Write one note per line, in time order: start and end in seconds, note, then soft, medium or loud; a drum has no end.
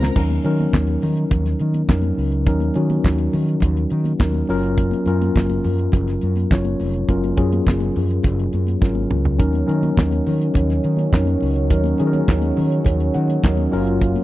0.00 0.14 C#3 medium
0.00 0.18 G#3 medium
0.00 0.18 C4 medium
0.00 0.15 C#4 medium
0.00 0.14 F4 medium
0.00 0.17 F4 medium
0.00 0.14 A#4 medium
0.00 0.14 C5 medium
0.00 0.18 C5 medium
0.00 0.14 A#5 medium
0.00 snare loud
0.15 0.36 D#2 medium
0.15 0.34 F#3 medium
0.15 0.34 C#4 medium
0.15 0.34 D#4 medium
0.15 0.35 A#4 medium
0.15 kick loud
0.15 crash medium
0.30 closed hi-hat soft
0.30 high conga medium
0.44 0.65 D#3 medium
0.44 1.18 F#3 medium
0.44 1.18 C#4 medium
0.44 1.19 D#4 medium
0.44 1.19 A#4 medium
0.44 closed hi-hat medium
0.44 muted conga soft
0.58 closed hi-hat medium
0.58 high conga medium
0.73 0.94 D#2 medium
0.73 kick loud
0.73 snare loud
0.73 clap medium
0.73 muted conga soft
0.73 high conga medium
0.87 closed hi-hat medium
0.87 high conga medium
1.02 1.23 D#3 medium
1.02 open hi-hat medium
1.02 low conga medium
1.17 closed hi-hat soft
1.31 1.52 D#2 loud
1.31 kick loud
1.31 closed hi-hat medium
1.31 muted conga soft
1.31 low conga medium
1.46 snare soft
1.46 closed hi-hat soft
1.59 1.81 D#3 medium
1.59 closed hi-hat medium
1.59 muted conga soft
1.74 closed hi-hat medium
1.74 high conga medium
1.89 2.09 F2 medium
1.89 2.26 F#3 medium
1.89 2.26 C#4 medium
1.89 2.26 D#4 medium
1.89 2.26 A#4 medium
1.89 kick loud
1.89 snare loud
1.89 clap medium
1.89 muted conga soft
2.02 closed hi-hat soft
2.02 high conga medium
2.18 2.47 C#2 medium
2.18 open hi-hat medium
2.32 closed hi-hat soft
2.47 2.67 D#2 loud
2.47 2.65 F#3 medium
2.47 2.65 C#4 medium
2.47 2.65 D#4 medium
2.47 2.66 A#4 medium
2.47 kick loud
2.47 closed hi-hat medium
2.47 muted conga soft
2.60 closed hi-hat soft
2.60 high conga medium
2.74 2.96 D#3 medium
2.74 3.49 F#3 medium
2.74 3.49 C#4 medium
2.74 3.49 D#4 medium
2.74 3.49 F#4 medium
2.74 closed hi-hat medium
2.74 muted conga soft
2.90 closed hi-hat soft
2.90 high conga medium
3.04 3.25 D#2 medium
3.04 kick loud
3.04 snare loud
3.04 clap medium
3.04 high conga medium
3.18 closed hi-hat medium
3.18 high conga medium
3.33 3.54 D#3 medium
3.33 open hi-hat medium
3.33 muted conga soft
3.33 low conga medium
3.49 closed hi-hat soft
3.60 3.83 D#2 loud
3.60 kick loud
3.60 closed hi-hat medium
3.60 low conga medium
3.77 closed hi-hat soft
3.90 4.11 D#3 loud
3.90 closed hi-hat soft
4.04 closed hi-hat soft
4.04 high conga medium
4.19 4.40 D#2 medium
4.19 4.48 F#3 medium
4.19 4.48 C#4 medium
4.19 4.49 D#4 medium
4.19 4.49 A#4 medium
4.19 kick loud
4.19 snare loud
4.19 clap medium
4.19 muted conga soft
4.33 closed hi-hat soft
4.33 high conga medium
4.47 4.89 F#1 medium
4.47 4.95 F#3 medium
4.47 4.95 C#4 medium
4.47 4.95 F4 medium
4.47 4.96 A#4 loud
4.47 open hi-hat medium
4.47 muted conga soft
4.63 closed hi-hat soft
4.77 kick loud
4.77 closed hi-hat medium
4.77 muted conga soft
4.91 closed hi-hat soft
4.91 high conga medium
5.06 5.26 F#2 medium
5.06 5.80 F#3 medium
5.06 5.80 C#4 medium
5.06 5.80 F4 medium
5.06 5.81 A#4 medium
5.06 closed hi-hat medium
5.06 muted conga soft
5.21 closed hi-hat medium
5.21 high conga medium
5.36 5.56 F#1 medium
5.36 kick loud
5.36 snare loud
5.36 clap medium
5.36 high conga medium
5.50 closed hi-hat soft
5.50 high conga medium
5.64 5.85 F#2 loud
5.64 open hi-hat medium
5.64 low conga medium
5.79 closed hi-hat soft
5.92 6.13 F#1 medium
5.92 kick loud
5.92 closed hi-hat medium
5.92 low conga medium
6.08 snare soft
6.08 closed hi-hat soft
6.21 6.43 F#2 medium
6.21 closed hi-hat soft
6.21 muted conga soft
6.36 closed hi-hat medium
6.36 high conga medium
6.51 6.71 F#1 medium
6.51 6.88 F#3 medium
6.51 6.88 C#4 medium
6.51 6.88 F4 medium
6.51 6.89 C#5 medium
6.51 kick loud
6.51 snare loud
6.51 clap medium
6.51 muted conga soft
6.65 closed hi-hat soft
6.65 high conga medium
6.80 7.00 F1 loud
6.80 open hi-hat medium
6.80 muted conga soft
6.94 closed hi-hat soft
7.08 7.29 F#1 loud
7.08 7.27 F#3 medium
7.08 7.27 C#4 medium
7.08 7.27 F4 medium
7.08 7.28 A#4 medium
7.08 kick medium
7.08 closed hi-hat medium
7.08 muted conga soft
7.24 closed hi-hat soft
7.24 high conga medium
7.36 7.58 F#2 medium
7.36 8.10 F#3 medium
7.36 8.11 C#4 medium
7.36 8.11 F4 medium
7.36 8.11 G#4 medium
7.36 kick loud
7.36 closed hi-hat medium
7.36 muted conga soft
7.52 closed hi-hat soft
7.52 high conga medium
7.67 7.87 F#1 medium
7.67 kick loud
7.67 snare loud
7.67 clap medium
7.67 high conga medium
7.80 closed hi-hat soft
7.80 high conga medium
7.96 8.16 F#2 medium
7.96 open hi-hat medium
7.96 muted conga soft
7.96 low conga medium
8.11 closed hi-hat soft
8.23 8.45 F#1 loud
8.23 kick loud
8.23 closed hi-hat medium
8.23 muted conga soft
8.23 low conga medium
8.39 closed hi-hat soft
8.53 8.74 F#2 medium
8.53 closed hi-hat medium
8.53 muted conga soft
8.67 closed hi-hat medium
8.67 high conga medium
8.81 9.02 G#1 medium
8.81 9.18 F#3 medium
8.81 9.18 C#4 medium
8.81 9.18 F4 medium
8.81 9.19 A#4 medium
8.81 kick loud
8.81 snare medium
8.81 muted conga soft
8.95 high conga medium
9.11 9.40 C#2 medium
9.11 mid tom medium
9.25 floor tom loud
9.38 9.60 D#2 medium
9.38 13.68 D#3 medium
9.38 9.57 F#3 medium
9.38 14.24 F#3 medium
9.38 13.68 C#4 medium
9.38 9.58 C#4 medium
9.38 9.58 D#4 medium
9.38 9.58 A#4 medium
9.38 kick loud
9.38 closed hi-hat medium
9.53 closed hi-hat soft
9.53 high conga medium
9.66 9.89 D#3 medium
9.66 10.41 F#3 medium
9.66 10.41 C#4 medium
9.66 10.42 D#4 medium
9.66 10.42 A#4 medium
9.66 closed hi-hat medium
9.83 closed hi-hat soft
9.83 high conga medium
9.97 10.18 D#2 medium
9.97 kick loud
9.97 snare loud
9.97 clap medium
9.97 muted conga soft
9.97 high conga medium
10.11 closed hi-hat medium
10.11 high conga medium
10.26 10.47 D#3 loud
10.26 open hi-hat medium
10.26 low conga medium
10.41 closed hi-hat soft
10.54 10.76 D#2 loud
10.54 kick loud
10.54 closed hi-hat medium
10.54 muted conga soft
10.54 low conga medium
10.70 snare soft
10.70 closed hi-hat soft
10.84 11.04 D#3 medium
10.84 closed hi-hat medium
10.97 closed hi-hat soft
10.97 high conga soft
11.12 11.33 F2 medium
11.12 11.49 F#3 medium
11.12 11.50 C#4 medium
11.12 11.50 D#4 medium
11.12 11.50 A#4 medium
11.12 kick loud
11.12 snare loud
11.12 clap medium
11.25 closed hi-hat soft
11.25 high conga medium
11.41 11.71 C#2 medium
11.41 open hi-hat medium
11.41 muted conga soft
11.56 closed hi-hat soft
11.70 11.91 D#2 loud
11.70 11.89 F#3 medium
11.70 11.89 C#4 medium
11.70 11.89 D#4 medium
11.70 11.90 A#4 medium
11.70 kick loud
11.70 closed hi-hat medium
11.84 closed hi-hat soft
11.84 high conga medium
11.98 12.20 D#3 medium
11.98 12.73 F#3 medium
11.98 12.73 C#4 medium
11.98 12.73 D#4 medium
11.98 12.06 G#4 medium
11.98 closed hi-hat medium
11.98 muted conga soft
12.07 12.77 A#4 medium
12.13 closed hi-hat soft
12.13 high conga medium
12.28 12.49 D#2 medium
12.28 kick loud
12.28 snare loud
12.28 clap medium
12.28 muted conga soft
12.28 high conga medium
12.42 closed hi-hat medium
12.42 high conga medium
12.57 12.78 D#3 loud
12.57 open hi-hat medium
12.57 low conga medium
12.72 closed hi-hat soft
12.85 13.06 D#2 loud
12.85 kick loud
12.85 closed hi-hat medium
12.85 muted conga soft
12.85 low conga medium
13.00 closed hi-hat soft
13.14 13.36 D#3 medium
13.14 13.42 F#5 medium
13.14 closed hi-hat medium
13.14 muted conga soft
13.28 closed hi-hat medium
13.28 high conga medium
13.43 13.64 D#2 medium
13.43 13.70 F#3 medium
13.43 13.71 C#4 medium
13.43 13.73 D#4 medium
13.43 13.72 A#4 medium
13.43 13.71 D#5 medium
13.43 kick loud
13.43 snare loud
13.43 clap medium
13.43 muted conga soft
13.57 closed hi-hat soft
13.57 high conga medium
13.71 14.13 F#1 medium
13.71 14.18 F#3 loud
13.71 14.24 A#3 medium
13.71 14.19 C#4 medium
13.71 14.24 F4 medium
13.71 14.19 F4 medium
13.71 14.19 A#4 loud
13.71 13.99 C#5 medium
13.71 open hi-hat medium
13.87 closed hi-hat soft
14.02 kick loud
14.02 closed hi-hat medium
14.15 closed hi-hat soft
14.15 high conga medium